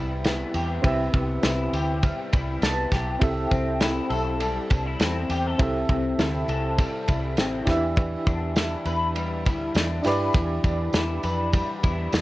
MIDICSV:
0, 0, Header, 1, 5, 480
1, 0, Start_track
1, 0, Tempo, 594059
1, 680, Time_signature, 4, 2, 24, 8
1, 9867, End_track
2, 0, Start_track
2, 0, Title_t, "Synth keys"
2, 0, Program_c, 0, 88
2, 0, Control_c, 0, 64, 127
2, 0, Note_on_c, 0, 60, 77
2, 0, Note_on_c, 0, 64, 64
2, 0, Note_on_c, 0, 67, 71
2, 0, Note_on_c, 0, 71, 73
2, 0, Note_on_c, 0, 76, 84
2, 638, Note_off_c, 0, 60, 0
2, 646, Note_off_c, 0, 64, 0
2, 649, Note_off_c, 0, 67, 0
2, 655, Note_off_c, 0, 71, 0
2, 661, Note_off_c, 0, 76, 0
2, 663, Note_on_c, 0, 60, 75
2, 673, Note_on_c, 0, 64, 72
2, 682, Note_on_c, 0, 67, 65
2, 693, Note_on_c, 0, 71, 71
2, 703, Note_on_c, 0, 76, 81
2, 2130, Note_on_c, 0, 81, 84
2, 2557, Note_off_c, 0, 60, 0
2, 2562, Note_off_c, 0, 64, 0
2, 2567, Note_off_c, 0, 67, 0
2, 2572, Note_off_c, 0, 71, 0
2, 2572, Note_off_c, 0, 81, 0
2, 2577, Note_off_c, 0, 76, 0
2, 2579, Note_on_c, 0, 60, 69
2, 2586, Note_on_c, 0, 64, 67
2, 2596, Note_on_c, 0, 67, 67
2, 2609, Note_on_c, 0, 69, 74
2, 2610, Control_c, 0, 64, 0
2, 2615, Note_on_c, 0, 76, 78
2, 2759, Control_c, 0, 64, 127
2, 4475, Note_off_c, 0, 60, 0
2, 4479, Note_off_c, 0, 64, 0
2, 4484, Note_off_c, 0, 67, 0
2, 4491, Note_off_c, 0, 69, 0
2, 4493, Note_off_c, 0, 76, 0
2, 4507, Note_on_c, 0, 60, 76
2, 4514, Note_on_c, 0, 64, 71
2, 4528, Note_on_c, 0, 67, 65
2, 4539, Note_on_c, 0, 69, 69
2, 4545, Note_on_c, 0, 76, 86
2, 6161, Note_off_c, 0, 60, 0
2, 6164, Note_off_c, 0, 64, 0
2, 6171, Note_off_c, 0, 67, 0
2, 6176, Note_off_c, 0, 69, 0
2, 6180, Note_off_c, 0, 76, 0
2, 6183, Note_on_c, 0, 62, 74
2, 6194, Note_on_c, 0, 64, 69
2, 6203, Note_on_c, 0, 67, 71
2, 6208, Control_c, 0, 64, 0
2, 6213, Note_on_c, 0, 71, 66
2, 6227, Note_on_c, 0, 76, 88
2, 6331, Control_c, 0, 64, 127
2, 8080, Note_off_c, 0, 62, 0
2, 8085, Note_off_c, 0, 64, 0
2, 8090, Note_off_c, 0, 67, 0
2, 8095, Note_off_c, 0, 71, 0
2, 8100, Note_on_c, 0, 62, 76
2, 8102, Note_off_c, 0, 76, 0
2, 8114, Note_on_c, 0, 64, 72
2, 8126, Note_on_c, 0, 67, 71
2, 8134, Note_on_c, 0, 71, 75
2, 8141, Note_on_c, 0, 74, 89
2, 9867, Note_off_c, 0, 62, 0
2, 9867, Note_off_c, 0, 64, 0
2, 9867, Note_off_c, 0, 67, 0
2, 9867, Note_off_c, 0, 71, 0
2, 9867, Note_off_c, 0, 74, 0
2, 9867, End_track
3, 0, Start_track
3, 0, Title_t, "Clean electric guitar"
3, 0, Program_c, 1, 27
3, 0, Note_on_c, 1, 55, 72
3, 0, Note_on_c, 1, 59, 64
3, 0, Note_on_c, 1, 64, 65
3, 0, Note_on_c, 1, 67, 64
3, 201, Note_off_c, 1, 59, 0
3, 217, Note_on_c, 1, 59, 62
3, 443, Note_off_c, 1, 67, 0
3, 446, Note_on_c, 1, 67, 76
3, 686, Note_on_c, 1, 48, 85
3, 907, Note_off_c, 1, 59, 0
3, 917, Note_on_c, 1, 59, 56
3, 1161, Note_off_c, 1, 64, 0
3, 1164, Note_on_c, 1, 64, 62
3, 1402, Note_off_c, 1, 67, 0
3, 1405, Note_on_c, 1, 67, 65
3, 1641, Note_off_c, 1, 55, 0
3, 1644, Note_on_c, 1, 55, 69
3, 1878, Note_off_c, 1, 64, 0
3, 1881, Note_on_c, 1, 64, 60
3, 2113, Note_off_c, 1, 59, 0
3, 2122, Note_on_c, 1, 59, 70
3, 2361, Note_off_c, 1, 67, 0
3, 2364, Note_on_c, 1, 67, 75
3, 2601, Note_off_c, 1, 48, 0
3, 2653, Note_off_c, 1, 59, 0
3, 2837, Note_on_c, 1, 60, 60
3, 3075, Note_off_c, 1, 64, 0
3, 3078, Note_on_c, 1, 64, 64
3, 3307, Note_off_c, 1, 67, 0
3, 3310, Note_on_c, 1, 69, 66
3, 3334, Note_off_c, 1, 55, 0
3, 3561, Note_on_c, 1, 55, 73
3, 3797, Note_off_c, 1, 64, 0
3, 3801, Note_on_c, 1, 62, 60
3, 3929, Note_off_c, 1, 62, 0
3, 3929, Note_on_c, 1, 64, 54
3, 4028, Note_off_c, 1, 60, 0
3, 4038, Note_on_c, 1, 60, 63
3, 4274, Note_off_c, 1, 69, 0
3, 4285, Note_on_c, 1, 67, 76
3, 4412, Note_off_c, 1, 67, 0
3, 4412, Note_on_c, 1, 69, 59
3, 4518, Note_on_c, 1, 48, 88
3, 4751, Note_off_c, 1, 60, 0
3, 4760, Note_on_c, 1, 60, 66
3, 4993, Note_off_c, 1, 64, 0
3, 5002, Note_on_c, 1, 64, 62
3, 5230, Note_off_c, 1, 69, 0
3, 5240, Note_on_c, 1, 69, 73
3, 5477, Note_off_c, 1, 55, 0
3, 5480, Note_on_c, 1, 55, 72
3, 5715, Note_off_c, 1, 64, 0
3, 5719, Note_on_c, 1, 64, 63
3, 5957, Note_off_c, 1, 60, 0
3, 5966, Note_on_c, 1, 60, 65
3, 6204, Note_on_c, 1, 52, 87
3, 6251, Note_off_c, 1, 48, 0
3, 6252, Note_off_c, 1, 69, 0
3, 6255, Note_off_c, 1, 60, 0
3, 6427, Note_off_c, 1, 52, 0
3, 6437, Note_on_c, 1, 52, 81
3, 6681, Note_on_c, 1, 62, 56
3, 6705, Note_off_c, 1, 64, 0
3, 6919, Note_on_c, 1, 64, 68
3, 7157, Note_on_c, 1, 71, 62
3, 7400, Note_off_c, 1, 55, 0
3, 7404, Note_on_c, 1, 55, 73
3, 7637, Note_off_c, 1, 64, 0
3, 7647, Note_on_c, 1, 64, 67
3, 7879, Note_off_c, 1, 62, 0
3, 7883, Note_on_c, 1, 62, 66
3, 8121, Note_off_c, 1, 71, 0
3, 8124, Note_on_c, 1, 71, 74
3, 8351, Note_off_c, 1, 52, 0
3, 8361, Note_on_c, 1, 52, 82
3, 8598, Note_off_c, 1, 62, 0
3, 8602, Note_on_c, 1, 62, 60
3, 8831, Note_off_c, 1, 64, 0
3, 8841, Note_on_c, 1, 64, 59
3, 9079, Note_off_c, 1, 71, 0
3, 9082, Note_on_c, 1, 71, 67
3, 9312, Note_off_c, 1, 55, 0
3, 9315, Note_on_c, 1, 55, 69
3, 9549, Note_off_c, 1, 64, 0
3, 9558, Note_on_c, 1, 64, 65
3, 9791, Note_off_c, 1, 62, 0
3, 9794, Note_on_c, 1, 62, 62
3, 9867, Note_off_c, 1, 52, 0
3, 9867, Note_off_c, 1, 55, 0
3, 9867, Note_off_c, 1, 62, 0
3, 9867, Note_off_c, 1, 64, 0
3, 9867, Note_off_c, 1, 71, 0
3, 9867, End_track
4, 0, Start_track
4, 0, Title_t, "Fingered electric bass"
4, 0, Program_c, 2, 33
4, 0, Note_on_c, 2, 36, 88
4, 346, Note_off_c, 2, 36, 0
4, 438, Note_on_c, 2, 40, 96
4, 631, Note_off_c, 2, 40, 0
4, 678, Note_on_c, 2, 36, 109
4, 871, Note_off_c, 2, 36, 0
4, 919, Note_on_c, 2, 36, 105
4, 1111, Note_off_c, 2, 36, 0
4, 1159, Note_on_c, 2, 36, 100
4, 1351, Note_off_c, 2, 36, 0
4, 1395, Note_on_c, 2, 38, 104
4, 1694, Note_off_c, 2, 38, 0
4, 1887, Note_on_c, 2, 36, 98
4, 2076, Note_off_c, 2, 36, 0
4, 2116, Note_on_c, 2, 36, 99
4, 2309, Note_off_c, 2, 36, 0
4, 2356, Note_on_c, 2, 35, 89
4, 2549, Note_off_c, 2, 35, 0
4, 2601, Note_on_c, 2, 36, 102
4, 2792, Note_off_c, 2, 36, 0
4, 2839, Note_on_c, 2, 36, 114
4, 3222, Note_off_c, 2, 36, 0
4, 3313, Note_on_c, 2, 35, 107
4, 3699, Note_off_c, 2, 35, 0
4, 3806, Note_on_c, 2, 36, 96
4, 3994, Note_off_c, 2, 36, 0
4, 4037, Note_on_c, 2, 40, 98
4, 4229, Note_off_c, 2, 40, 0
4, 4276, Note_on_c, 2, 40, 97
4, 4469, Note_off_c, 2, 40, 0
4, 4518, Note_on_c, 2, 36, 101
4, 4710, Note_off_c, 2, 36, 0
4, 4758, Note_on_c, 2, 36, 100
4, 4950, Note_off_c, 2, 36, 0
4, 4994, Note_on_c, 2, 38, 97
4, 5188, Note_off_c, 2, 38, 0
4, 5234, Note_on_c, 2, 36, 96
4, 5533, Note_off_c, 2, 36, 0
4, 5723, Note_on_c, 2, 36, 101
4, 5952, Note_off_c, 2, 36, 0
4, 5952, Note_on_c, 2, 33, 94
4, 6147, Note_off_c, 2, 33, 0
4, 6195, Note_on_c, 2, 40, 107
4, 6581, Note_off_c, 2, 40, 0
4, 6680, Note_on_c, 2, 40, 95
4, 7064, Note_off_c, 2, 40, 0
4, 7154, Note_on_c, 2, 40, 94
4, 7645, Note_off_c, 2, 40, 0
4, 7645, Note_on_c, 2, 38, 84
4, 7835, Note_off_c, 2, 38, 0
4, 7877, Note_on_c, 2, 40, 104
4, 8070, Note_off_c, 2, 40, 0
4, 8120, Note_on_c, 2, 43, 89
4, 8312, Note_off_c, 2, 43, 0
4, 8359, Note_on_c, 2, 40, 104
4, 8552, Note_off_c, 2, 40, 0
4, 8598, Note_on_c, 2, 40, 93
4, 8791, Note_off_c, 2, 40, 0
4, 8835, Note_on_c, 2, 40, 97
4, 9030, Note_off_c, 2, 40, 0
4, 9079, Note_on_c, 2, 41, 99
4, 9378, Note_off_c, 2, 41, 0
4, 9565, Note_on_c, 2, 40, 108
4, 9756, Note_off_c, 2, 40, 0
4, 9800, Note_on_c, 2, 40, 105
4, 9867, Note_off_c, 2, 40, 0
4, 9867, End_track
5, 0, Start_track
5, 0, Title_t, "Drums"
5, 196, Note_on_c, 9, 51, 72
5, 200, Note_on_c, 9, 54, 77
5, 206, Note_on_c, 9, 38, 93
5, 277, Note_off_c, 9, 51, 0
5, 281, Note_off_c, 9, 54, 0
5, 287, Note_off_c, 9, 38, 0
5, 437, Note_on_c, 9, 51, 65
5, 437, Note_on_c, 9, 54, 57
5, 517, Note_off_c, 9, 51, 0
5, 517, Note_off_c, 9, 54, 0
5, 678, Note_on_c, 9, 51, 76
5, 680, Note_on_c, 9, 36, 113
5, 759, Note_off_c, 9, 51, 0
5, 761, Note_off_c, 9, 36, 0
5, 920, Note_on_c, 9, 36, 88
5, 921, Note_on_c, 9, 51, 48
5, 1001, Note_off_c, 9, 36, 0
5, 1002, Note_off_c, 9, 51, 0
5, 1154, Note_on_c, 9, 51, 65
5, 1157, Note_on_c, 9, 54, 80
5, 1158, Note_on_c, 9, 38, 116
5, 1235, Note_off_c, 9, 51, 0
5, 1238, Note_off_c, 9, 54, 0
5, 1239, Note_off_c, 9, 38, 0
5, 1400, Note_on_c, 9, 51, 65
5, 1400, Note_on_c, 9, 54, 55
5, 1481, Note_off_c, 9, 51, 0
5, 1481, Note_off_c, 9, 54, 0
5, 1638, Note_on_c, 9, 51, 76
5, 1638, Note_on_c, 9, 54, 57
5, 1641, Note_on_c, 9, 36, 104
5, 1718, Note_off_c, 9, 54, 0
5, 1719, Note_off_c, 9, 51, 0
5, 1722, Note_off_c, 9, 36, 0
5, 1880, Note_on_c, 9, 51, 66
5, 1886, Note_on_c, 9, 36, 101
5, 1889, Note_on_c, 9, 54, 42
5, 1961, Note_off_c, 9, 51, 0
5, 1967, Note_off_c, 9, 36, 0
5, 1970, Note_off_c, 9, 54, 0
5, 2118, Note_on_c, 9, 51, 66
5, 2123, Note_on_c, 9, 54, 74
5, 2128, Note_on_c, 9, 38, 102
5, 2199, Note_off_c, 9, 51, 0
5, 2204, Note_off_c, 9, 54, 0
5, 2209, Note_off_c, 9, 38, 0
5, 2358, Note_on_c, 9, 51, 63
5, 2359, Note_on_c, 9, 36, 80
5, 2361, Note_on_c, 9, 54, 59
5, 2368, Note_on_c, 9, 38, 36
5, 2439, Note_off_c, 9, 51, 0
5, 2440, Note_off_c, 9, 36, 0
5, 2442, Note_off_c, 9, 54, 0
5, 2449, Note_off_c, 9, 38, 0
5, 2597, Note_on_c, 9, 51, 82
5, 2597, Note_on_c, 9, 54, 31
5, 2600, Note_on_c, 9, 36, 107
5, 2678, Note_off_c, 9, 51, 0
5, 2678, Note_off_c, 9, 54, 0
5, 2681, Note_off_c, 9, 36, 0
5, 2841, Note_on_c, 9, 36, 87
5, 2842, Note_on_c, 9, 51, 49
5, 2842, Note_on_c, 9, 54, 35
5, 2922, Note_off_c, 9, 36, 0
5, 2923, Note_off_c, 9, 51, 0
5, 2923, Note_off_c, 9, 54, 0
5, 3075, Note_on_c, 9, 51, 69
5, 3079, Note_on_c, 9, 38, 123
5, 3079, Note_on_c, 9, 54, 74
5, 3156, Note_off_c, 9, 51, 0
5, 3160, Note_off_c, 9, 38, 0
5, 3160, Note_off_c, 9, 54, 0
5, 3315, Note_on_c, 9, 51, 64
5, 3324, Note_on_c, 9, 54, 54
5, 3396, Note_off_c, 9, 51, 0
5, 3405, Note_off_c, 9, 54, 0
5, 3558, Note_on_c, 9, 51, 76
5, 3564, Note_on_c, 9, 54, 51
5, 3639, Note_off_c, 9, 51, 0
5, 3645, Note_off_c, 9, 54, 0
5, 3799, Note_on_c, 9, 51, 66
5, 3805, Note_on_c, 9, 36, 93
5, 3807, Note_on_c, 9, 54, 41
5, 3880, Note_off_c, 9, 51, 0
5, 3886, Note_off_c, 9, 36, 0
5, 3888, Note_off_c, 9, 54, 0
5, 4036, Note_on_c, 9, 51, 73
5, 4045, Note_on_c, 9, 54, 81
5, 4046, Note_on_c, 9, 38, 103
5, 4117, Note_off_c, 9, 51, 0
5, 4125, Note_off_c, 9, 54, 0
5, 4127, Note_off_c, 9, 38, 0
5, 4278, Note_on_c, 9, 51, 67
5, 4278, Note_on_c, 9, 54, 61
5, 4359, Note_off_c, 9, 51, 0
5, 4359, Note_off_c, 9, 54, 0
5, 4515, Note_on_c, 9, 54, 29
5, 4517, Note_on_c, 9, 51, 73
5, 4519, Note_on_c, 9, 36, 125
5, 4596, Note_off_c, 9, 54, 0
5, 4598, Note_off_c, 9, 51, 0
5, 4600, Note_off_c, 9, 36, 0
5, 4759, Note_on_c, 9, 36, 88
5, 4760, Note_on_c, 9, 51, 49
5, 4840, Note_off_c, 9, 36, 0
5, 4841, Note_off_c, 9, 51, 0
5, 4998, Note_on_c, 9, 54, 81
5, 4999, Note_on_c, 9, 51, 76
5, 5003, Note_on_c, 9, 38, 112
5, 5079, Note_off_c, 9, 54, 0
5, 5080, Note_off_c, 9, 51, 0
5, 5084, Note_off_c, 9, 38, 0
5, 5234, Note_on_c, 9, 54, 54
5, 5240, Note_on_c, 9, 51, 59
5, 5315, Note_off_c, 9, 54, 0
5, 5321, Note_off_c, 9, 51, 0
5, 5477, Note_on_c, 9, 54, 54
5, 5480, Note_on_c, 9, 36, 93
5, 5480, Note_on_c, 9, 51, 81
5, 5558, Note_off_c, 9, 54, 0
5, 5561, Note_off_c, 9, 36, 0
5, 5561, Note_off_c, 9, 51, 0
5, 5718, Note_on_c, 9, 51, 71
5, 5723, Note_on_c, 9, 54, 41
5, 5725, Note_on_c, 9, 36, 93
5, 5798, Note_off_c, 9, 51, 0
5, 5804, Note_off_c, 9, 54, 0
5, 5805, Note_off_c, 9, 36, 0
5, 5955, Note_on_c, 9, 51, 65
5, 5956, Note_on_c, 9, 54, 73
5, 5964, Note_on_c, 9, 38, 96
5, 6035, Note_off_c, 9, 51, 0
5, 6037, Note_off_c, 9, 54, 0
5, 6045, Note_off_c, 9, 38, 0
5, 6194, Note_on_c, 9, 51, 63
5, 6194, Note_on_c, 9, 54, 59
5, 6198, Note_on_c, 9, 36, 80
5, 6204, Note_on_c, 9, 38, 37
5, 6275, Note_off_c, 9, 51, 0
5, 6275, Note_off_c, 9, 54, 0
5, 6278, Note_off_c, 9, 36, 0
5, 6285, Note_off_c, 9, 38, 0
5, 6431, Note_on_c, 9, 54, 30
5, 6440, Note_on_c, 9, 36, 118
5, 6442, Note_on_c, 9, 51, 72
5, 6511, Note_off_c, 9, 54, 0
5, 6521, Note_off_c, 9, 36, 0
5, 6523, Note_off_c, 9, 51, 0
5, 6677, Note_on_c, 9, 54, 36
5, 6680, Note_on_c, 9, 36, 85
5, 6682, Note_on_c, 9, 51, 46
5, 6758, Note_off_c, 9, 54, 0
5, 6761, Note_off_c, 9, 36, 0
5, 6762, Note_off_c, 9, 51, 0
5, 6913, Note_on_c, 9, 54, 74
5, 6916, Note_on_c, 9, 51, 68
5, 6920, Note_on_c, 9, 38, 125
5, 6994, Note_off_c, 9, 54, 0
5, 6997, Note_off_c, 9, 51, 0
5, 7001, Note_off_c, 9, 38, 0
5, 7154, Note_on_c, 9, 51, 65
5, 7155, Note_on_c, 9, 54, 52
5, 7235, Note_off_c, 9, 51, 0
5, 7236, Note_off_c, 9, 54, 0
5, 7397, Note_on_c, 9, 54, 50
5, 7400, Note_on_c, 9, 51, 78
5, 7478, Note_off_c, 9, 54, 0
5, 7480, Note_off_c, 9, 51, 0
5, 7639, Note_on_c, 9, 54, 40
5, 7647, Note_on_c, 9, 36, 95
5, 7648, Note_on_c, 9, 51, 69
5, 7720, Note_off_c, 9, 54, 0
5, 7727, Note_off_c, 9, 36, 0
5, 7729, Note_off_c, 9, 51, 0
5, 7874, Note_on_c, 9, 54, 83
5, 7879, Note_on_c, 9, 51, 63
5, 7889, Note_on_c, 9, 38, 97
5, 7954, Note_off_c, 9, 54, 0
5, 7960, Note_off_c, 9, 51, 0
5, 7969, Note_off_c, 9, 38, 0
5, 8108, Note_on_c, 9, 54, 60
5, 8116, Note_on_c, 9, 46, 59
5, 8116, Note_on_c, 9, 51, 67
5, 8125, Note_on_c, 9, 38, 37
5, 8188, Note_off_c, 9, 54, 0
5, 8196, Note_off_c, 9, 46, 0
5, 8196, Note_off_c, 9, 51, 0
5, 8206, Note_off_c, 9, 38, 0
5, 8343, Note_on_c, 9, 54, 29
5, 8357, Note_on_c, 9, 51, 74
5, 8358, Note_on_c, 9, 36, 120
5, 8358, Note_on_c, 9, 44, 64
5, 8424, Note_off_c, 9, 54, 0
5, 8438, Note_off_c, 9, 51, 0
5, 8439, Note_off_c, 9, 36, 0
5, 8439, Note_off_c, 9, 44, 0
5, 8595, Note_on_c, 9, 54, 31
5, 8599, Note_on_c, 9, 36, 81
5, 8602, Note_on_c, 9, 51, 49
5, 8676, Note_off_c, 9, 54, 0
5, 8680, Note_off_c, 9, 36, 0
5, 8683, Note_off_c, 9, 51, 0
5, 8830, Note_on_c, 9, 54, 80
5, 8838, Note_on_c, 9, 51, 71
5, 8842, Note_on_c, 9, 38, 125
5, 8910, Note_off_c, 9, 54, 0
5, 8918, Note_off_c, 9, 51, 0
5, 8922, Note_off_c, 9, 38, 0
5, 9074, Note_on_c, 9, 54, 55
5, 9077, Note_on_c, 9, 51, 62
5, 9154, Note_off_c, 9, 54, 0
5, 9158, Note_off_c, 9, 51, 0
5, 9313, Note_on_c, 9, 54, 54
5, 9319, Note_on_c, 9, 36, 96
5, 9320, Note_on_c, 9, 51, 80
5, 9393, Note_off_c, 9, 54, 0
5, 9400, Note_off_c, 9, 36, 0
5, 9400, Note_off_c, 9, 51, 0
5, 9561, Note_on_c, 9, 51, 64
5, 9561, Note_on_c, 9, 54, 40
5, 9565, Note_on_c, 9, 36, 92
5, 9641, Note_off_c, 9, 51, 0
5, 9642, Note_off_c, 9, 54, 0
5, 9646, Note_off_c, 9, 36, 0
5, 9796, Note_on_c, 9, 54, 84
5, 9799, Note_on_c, 9, 51, 65
5, 9808, Note_on_c, 9, 38, 107
5, 9867, Note_off_c, 9, 38, 0
5, 9867, Note_off_c, 9, 51, 0
5, 9867, Note_off_c, 9, 54, 0
5, 9867, End_track
0, 0, End_of_file